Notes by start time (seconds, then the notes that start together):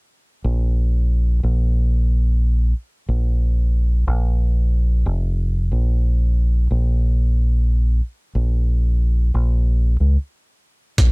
0.44 A#1
1.43 A#1
3.09 A#1
4.07 A#1
5.06 F1
5.72 A#1
6.71 A#1
8.35 A#1
9.34 A#1
10.00 C#2
10.98 A#1, kick, closed hi-hat